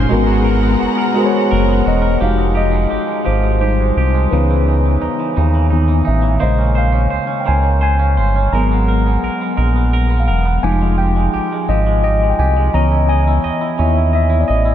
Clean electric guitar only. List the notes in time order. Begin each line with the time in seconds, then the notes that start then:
Already playing: C#4 G#4 C5
0.09 G#3
0.27 F#4
0.44 A#4
0.62 B3
0.79 F#4
0.98 A#4
1.15 G#3
1.33 F#4
1.51 A#4
1.68 B3
1.85 F#4
2.02 A#4
2.20 F3 G4
2.37 G#3
2.55 G4
2.71 G#3
2.90 G4
3.07 G#3
3.25 F3 G4
3.42 G#3
3.61 G4
3.80 G#3
3.98 G4
4.14 G#3
4.33 C#3 D#4
4.50 E3
4.68 D#4
4.86 E3
5.02 D#4
5.19 E3
5.37 C#3 D#4
5.55 E3
5.70 D#4
5.88 E3
6.05 D#4
6.22 E3
6.40 A#3 C5
6.58 C#4
6.75 C5
6.92 C#4
7.10 C5
7.27 C#4
7.46 A#3 C5
7.63 C#4
7.81 C5
7.99 C#4
8.17 C5
8.36 C#4
8.54 G#3 A#4
8.71 B3
8.88 A#4
9.06 B3
9.24 A#4
9.41 B3
9.57 G#3 A#4
9.76 B3
9.93 A#4
10.10 B3
10.28 A#4
10.45 B3
10.64 F3 G4
10.82 G#3
10.98 G4
11.16 G#3
11.34 G4
11.52 G#3
11.70 F3 G4
11.86 G#3
12.04 G4
12.23 G#3
12.39 G4
12.57 G#3
12.74 C#4 D#5
12.92 E4
13.09 D#5
13.27 E4
13.44 D#5
13.61 E4
13.79 C#4 D#5
13.97 E4
14.13 D#5
14.30 E4
14.48 D#5
14.65 E4